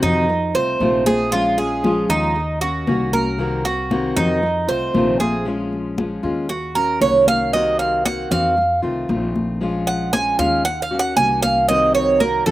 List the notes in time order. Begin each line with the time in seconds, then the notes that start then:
Already playing: C3 D#3 A#3 C4 F#4
0.02 F2 D#4, high conga, low conga
0.29 muted steel-string acoustic guitar stroke, high conga
0.54 C2 A3 C4 F4 C5, high conga
0.80 A#1 C3 D#3 A3 C4 F4, high conga
1.06 A3 C4 F4 G#4, high conga
1.31 F3 G#3 C#4 F4, high conga
1.58 G#3 C#4 F4 G#4, high conga
1.84 F3 G#3 C#4 F4, high conga
2.09 D#2 D#4, high conga
2.36 muted steel-string acoustic guitar stroke, high conga
2.61 A#3 C#4 F#4, high conga
2.87 C2 D#3 A#3 C#4 F#4, high conga
3.13 A#3 C#4 F#4 A#4, high conga
3.38 C3 D#3 A#3 C4 F#4, high conga
3.64 A#3 C4 F#4, high conga
3.90 C3 D#3 A#3 C4 F#4, high conga
4.17 F2 D#4, high conga, low conga
4.42 muted steel-string acoustic guitar stroke, high conga
4.67 C2 A3 C4 F4 C5, high conga
4.94 A#1 C3 D#3 A3 C4 F4, high conga
5.20 A3 C4 F4 G#4, high conga
5.45 F3 G#3 C#4 F4, high conga
5.73 high conga
5.97 F3 G#3 C#4 F4, high conga
6.23 D#2 G#3 C#4 F4, high conga
6.49 F#4, muted steel-string acoustic guitar stroke, high conga
6.75 A#3 C#4 F#4 A#4, high conga
7.01 C2 D#3 A#3 C#4 F#4 C#5, high conga
7.27 F5, high conga
7.53 C3 D#3 A#3 C4 F#4 D#5, high conga
7.79 F5, high conga
8.05 D#3 A#3 C4 F#4 F#5, high conga
8.31 F2 D#3 A#3 C4 F#4 F5, high conga, low conga
8.57 muted steel-string acoustic guitar stroke, high conga
8.82 C2 D#3 A3 C4 F4, high conga
9.08 A#1 D#3 A3 C4 F4, high conga
9.36 high conga
9.61 F3 G#3 C#4 F4, high conga
9.87 F#5, high conga
10.13 F3 G#3 C#4 F4 G#5, high conga
10.39 D#2 G#3 C#4 F4 F5, high conga
10.65 F#5, muted steel-string acoustic guitar stroke, high conga
10.82 F5
10.91 A#3 C#4 F#4, high conga
10.99 F#5
11.16 C2 D#3 A#3 C#4 F#4 G#5, high conga
11.43 F5, high conga
11.68 C3 D#3 A#3 C4 F#4 D#5, high conga
11.95 C#5, high conga
12.20 D#3 A#3 C4 F#4 A#4, high conga
12.46 F2 A#3 C4 F#4 A4, high conga, low conga